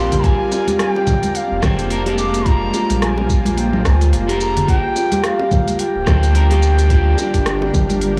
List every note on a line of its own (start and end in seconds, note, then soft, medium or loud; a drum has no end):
0.00 0.21 F3 medium
0.00 1.94 G3 medium
0.00 0.21 A#3 medium
0.00 0.22 C4 medium
0.00 1.34 C4 medium
0.00 0.22 G4 medium
0.00 5.55 D5 medium
0.00 0.12 F5 medium
0.00 1.25 F5 medium
0.00 0.26 C6 loud
0.12 0.22 A#1 medium
0.12 0.23 G4 loud
0.12 open hi-hat soft
0.12 low conga medium
0.12 shaker soft
0.23 0.37 A#1 medium
0.23 0.34 F3 loud
0.23 0.35 A#3 medium
0.23 5.48 A#3 medium
0.23 0.35 D4 medium
0.23 0.40 F4 loud
0.23 0.36 G#4 loud
0.23 0.82 G#5 loud
0.23 kick loud
0.23 open hi-hat medium
0.23 shaker soft
0.52 0.67 F4 medium
0.52 open hi-hat soft
0.52 high bongo medium
0.52 shaker medium
0.68 1.22 G4 loud
0.68 open hi-hat soft
0.68 high conga medium
0.68 shaker soft
0.78 6.44 F4 medium
0.78 1.38 G5 loud
0.78 cross-stick medium
0.78 open hi-hat medium
0.78 shaker soft
0.96 high bongo medium
1.07 kick loud
1.07 low conga medium
1.07 shaker medium
1.23 open hi-hat soft
1.23 high conga medium
1.23 shaker soft
1.35 5.51 C5 medium
1.35 1.65 F5 loud
1.35 open hi-hat medium
1.35 shaker soft
1.51 1.61 F1 loud
1.61 2.70 F1 loud
1.61 1.87 F3 medium
1.61 1.87 A#3 medium
1.61 1.88 D4 medium
1.61 1.88 G#4 medium
1.61 1.78 C5 medium
1.61 1.91 G5 medium
1.61 kick loud
1.61 cross-stick medium
1.61 high bongo medium
1.61 low conga medium
1.61 shaker medium
1.79 open hi-hat soft
1.79 shaker soft
1.90 2.01 F3 medium
1.90 2.02 A#3 medium
1.90 2.02 D4 medium
1.90 2.02 A#4 medium
1.90 open hi-hat medium
1.90 shaker soft
2.06 2.43 F3 medium
2.06 2.44 G#3 loud
2.06 2.43 A#3 medium
2.06 2.44 D4 medium
2.06 2.18 G4 medium
2.06 open hi-hat soft
2.06 high bongo soft
2.18 2.45 G#4 medium
2.18 2.49 D6 loud
2.18 shaker medium
2.34 open hi-hat soft
2.34 high bongo soft
2.34 shaker soft
2.44 4.24 F3 medium
2.44 4.25 A#3 medium
2.44 4.25 D4 medium
2.44 2.61 F4 medium
2.44 3.04 A#5 loud
2.44 kick loud
2.44 open hi-hat medium
2.44 shaker soft
2.48 4.26 G#3 medium
2.74 2.89 F4 medium
2.74 open hi-hat soft
2.74 high bongo medium
2.74 shaker medium
2.90 3.26 A#1 medium
2.90 3.44 G3 loud
2.90 open hi-hat soft
2.90 shaker soft
3.02 3.60 G#5 loud
3.02 cross-stick medium
3.02 open hi-hat medium
3.02 shaker soft
3.18 high bongo medium
3.29 3.87 A#1 medium
3.29 kick loud
3.29 high conga soft
3.29 shaker medium
3.45 open hi-hat soft
3.45 high conga medium
3.45 shaker soft
3.58 3.88 G5 medium
3.58 open hi-hat medium
3.58 shaker soft
3.73 low conga medium
3.85 4.14 D2 loud
3.85 4.00 C5 medium
3.85 3.91 A#5 medium
3.85 kick loud
3.85 cross-stick medium
3.85 high bongo medium
3.85 shaker medium
3.90 4.13 G#5 medium
4.01 open hi-hat soft
4.01 shaker soft
4.13 4.65 F1 medium
4.13 open hi-hat medium
4.13 shaker soft
4.28 4.65 F3 medium
4.28 4.65 A#3 medium
4.28 4.66 D4 medium
4.28 4.40 G4 medium
4.28 4.66 A#4 loud
4.28 open hi-hat soft
4.41 4.67 G#4 medium
4.41 4.66 A#5 loud
4.41 shaker medium
4.57 open hi-hat soft
4.57 low conga medium
4.57 shaker soft
4.67 4.81 G1 loud
4.67 4.79 F3 medium
4.67 8.20 G3 medium
4.67 4.79 A#3 medium
4.67 4.79 D4 medium
4.67 4.84 F4 loud
4.67 4.80 G4 loud
4.67 5.25 G5 loud
4.67 kick loud
4.67 open hi-hat medium
4.67 shaker soft
4.96 5.12 F4 medium
4.96 open hi-hat soft
4.96 high bongo medium
4.96 shaker medium
5.12 8.20 D4 medium
5.12 5.66 G4 loud
5.12 open hi-hat soft
5.12 high conga medium
5.12 shaker soft
5.23 5.81 F5 loud
5.23 cross-stick medium
5.23 open hi-hat medium
5.23 shaker soft
5.35 8.20 G4 medium
5.39 high bongo medium
5.51 kick loud
5.51 low conga medium
5.51 shaker medium
5.68 open hi-hat soft
5.68 high conga medium
5.68 shaker soft
5.79 8.20 G5 loud
5.79 open hi-hat medium
5.79 shaker soft
5.96 6.05 D1 loud
6.06 7.15 D2 medium
6.06 6.32 F3 medium
6.06 6.32 A#3 medium
6.06 6.32 D4 medium
6.06 6.32 G4 medium
6.06 8.20 A#4 medium
6.06 6.23 C5 medium
6.06 kick loud
6.06 cross-stick medium
6.06 high bongo medium
6.06 low conga medium
6.06 shaker medium
6.23 open hi-hat soft
6.23 shaker soft
6.34 6.45 F3 medium
6.34 6.46 A#3 medium
6.34 6.46 D4 medium
6.34 6.46 A#4 medium
6.34 open hi-hat medium
6.34 shaker soft
6.49 6.87 F3 medium
6.49 6.87 A#3 medium
6.49 6.88 D4 medium
6.49 6.88 G4 loud
6.49 6.62 G4 medium
6.49 open hi-hat soft
6.49 high bongo soft
6.63 6.90 G4 medium
6.63 shaker medium
6.78 open hi-hat soft
6.78 high bongo soft
6.78 shaker soft
6.88 8.20 F3 medium
6.88 8.20 A#3 medium
6.88 8.20 D4 medium
6.88 7.06 F4 loud
6.88 8.20 G4 medium
6.88 kick loud
6.88 open hi-hat medium
6.88 shaker soft
7.18 7.34 F4 medium
7.18 open hi-hat soft
7.18 high bongo medium
7.18 shaker medium
7.34 7.70 G1 medium
7.34 7.88 G4 loud
7.34 kick medium
7.34 open hi-hat soft
7.34 shaker soft
7.46 cross-stick medium
7.46 open hi-hat medium
7.46 shaker soft
7.62 high bongo medium
7.73 8.20 G1 medium
7.73 kick loud
7.73 high conga soft
7.73 low conga medium
7.73 shaker medium
7.89 open hi-hat soft
7.89 high conga medium
7.89 shaker soft
8.01 open hi-hat medium
8.01 shaker soft